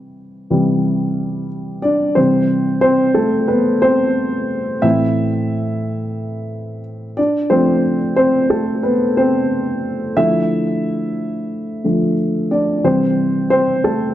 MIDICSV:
0, 0, Header, 1, 2, 480
1, 0, Start_track
1, 0, Key_signature, 0, "major"
1, 0, Tempo, 666741
1, 1567, Time_signature, 4, 2, 24, 8
1, 10181, End_track
2, 0, Start_track
2, 0, Title_t, "Upright piano"
2, 0, Program_c, 0, 0
2, 0, Control_c, 0, 64, 127
2, 361, Note_on_c, 0, 48, 49
2, 364, Note_on_c, 0, 52, 44
2, 367, Note_on_c, 0, 55, 53
2, 1055, Note_off_c, 0, 48, 0
2, 1057, Note_off_c, 0, 52, 0
2, 1058, Note_off_c, 0, 55, 0
2, 1313, Note_on_c, 0, 74, 65
2, 1330, Note_on_c, 0, 62, 51
2, 1550, Note_on_c, 0, 72, 70
2, 1552, Note_off_c, 0, 62, 0
2, 1554, Note_on_c, 0, 48, 45
2, 1558, Note_on_c, 0, 52, 39
2, 1563, Note_on_c, 0, 55, 47
2, 1564, Note_on_c, 0, 60, 52
2, 1567, Note_off_c, 0, 74, 0
2, 1578, Control_c, 0, 64, 0
2, 1720, Control_c, 0, 64, 127
2, 2014, Note_off_c, 0, 72, 0
2, 2017, Note_off_c, 0, 60, 0
2, 2025, Note_on_c, 0, 72, 80
2, 2044, Note_on_c, 0, 60, 59
2, 2252, Note_off_c, 0, 48, 0
2, 2254, Note_off_c, 0, 52, 0
2, 2256, Note_off_c, 0, 55, 0
2, 2264, Note_on_c, 0, 69, 65
2, 2268, Note_off_c, 0, 60, 0
2, 2281, Note_on_c, 0, 57, 56
2, 2284, Note_off_c, 0, 72, 0
2, 2505, Note_on_c, 0, 71, 73
2, 2507, Note_off_c, 0, 57, 0
2, 2521, Note_on_c, 0, 59, 55
2, 2523, Note_off_c, 0, 69, 0
2, 2747, Note_off_c, 0, 59, 0
2, 2749, Note_on_c, 0, 72, 86
2, 2762, Note_on_c, 0, 60, 57
2, 2763, Note_off_c, 0, 71, 0
2, 3456, Note_off_c, 0, 60, 0
2, 3470, Note_on_c, 0, 76, 80
2, 3472, Note_on_c, 0, 45, 47
2, 3477, Note_on_c, 0, 52, 40
2, 3480, Note_on_c, 0, 60, 50
2, 3483, Note_on_c, 0, 64, 63
2, 3496, Control_c, 0, 64, 0
2, 3500, Note_off_c, 0, 72, 0
2, 3609, Control_c, 0, 64, 127
2, 4890, Note_off_c, 0, 76, 0
2, 4896, Note_off_c, 0, 64, 0
2, 5131, Note_off_c, 0, 45, 0
2, 5134, Note_off_c, 0, 52, 0
2, 5135, Note_off_c, 0, 60, 0
2, 5162, Note_on_c, 0, 74, 72
2, 5174, Note_on_c, 0, 62, 56
2, 5177, Control_c, 0, 64, 0
2, 5287, Control_c, 0, 64, 127
2, 5394, Note_off_c, 0, 62, 0
2, 5398, Note_on_c, 0, 72, 71
2, 5400, Note_on_c, 0, 53, 46
2, 5402, Note_on_c, 0, 57, 44
2, 5408, Note_on_c, 0, 60, 57
2, 5412, Note_off_c, 0, 74, 0
2, 5723, Note_off_c, 0, 53, 0
2, 5724, Note_off_c, 0, 57, 0
2, 5859, Note_off_c, 0, 60, 0
2, 5867, Note_off_c, 0, 72, 0
2, 5878, Note_on_c, 0, 72, 78
2, 5888, Note_on_c, 0, 60, 57
2, 6111, Note_off_c, 0, 60, 0
2, 6119, Note_on_c, 0, 69, 69
2, 6126, Note_on_c, 0, 57, 55
2, 6130, Note_off_c, 0, 72, 0
2, 6350, Note_off_c, 0, 57, 0
2, 6358, Note_on_c, 0, 71, 70
2, 6368, Note_on_c, 0, 59, 58
2, 6371, Note_off_c, 0, 69, 0
2, 6413, Note_off_c, 0, 71, 0
2, 6422, Note_off_c, 0, 59, 0
2, 6603, Note_on_c, 0, 72, 76
2, 6612, Note_on_c, 0, 60, 61
2, 7301, Note_off_c, 0, 60, 0
2, 7318, Note_on_c, 0, 50, 42
2, 7319, Note_on_c, 0, 53, 40
2, 7319, Note_on_c, 0, 76, 80
2, 7326, Note_on_c, 0, 64, 63
2, 7327, Note_on_c, 0, 57, 49
2, 7338, Control_c, 0, 64, 0
2, 7347, Note_off_c, 0, 72, 0
2, 7466, Control_c, 0, 64, 127
2, 8514, Note_off_c, 0, 50, 0
2, 8517, Note_off_c, 0, 53, 0
2, 8518, Note_off_c, 0, 57, 0
2, 8525, Note_on_c, 0, 50, 37
2, 8527, Note_on_c, 0, 53, 37
2, 8529, Note_on_c, 0, 57, 42
2, 8735, Note_off_c, 0, 76, 0
2, 8738, Note_off_c, 0, 64, 0
2, 8742, Note_off_c, 0, 50, 0
2, 8744, Note_off_c, 0, 53, 0
2, 8745, Note_off_c, 0, 57, 0
2, 9007, Note_on_c, 0, 74, 64
2, 9010, Note_on_c, 0, 62, 54
2, 9232, Note_off_c, 0, 62, 0
2, 9242, Note_on_c, 0, 48, 41
2, 9244, Note_on_c, 0, 52, 41
2, 9247, Note_on_c, 0, 72, 69
2, 9249, Note_on_c, 0, 55, 51
2, 9250, Note_on_c, 0, 60, 56
2, 9255, Note_off_c, 0, 74, 0
2, 9257, Control_c, 0, 64, 0
2, 9363, Control_c, 0, 64, 127
2, 9699, Note_off_c, 0, 72, 0
2, 9700, Note_off_c, 0, 60, 0
2, 9721, Note_on_c, 0, 72, 77
2, 9730, Note_on_c, 0, 60, 60
2, 9952, Note_off_c, 0, 60, 0
2, 9965, Note_on_c, 0, 69, 68
2, 9972, Note_off_c, 0, 72, 0
2, 9975, Note_on_c, 0, 57, 54
2, 10181, Note_off_c, 0, 48, 0
2, 10181, Note_off_c, 0, 52, 0
2, 10181, Note_off_c, 0, 55, 0
2, 10181, Note_off_c, 0, 57, 0
2, 10181, Note_off_c, 0, 69, 0
2, 10181, End_track
0, 0, End_of_file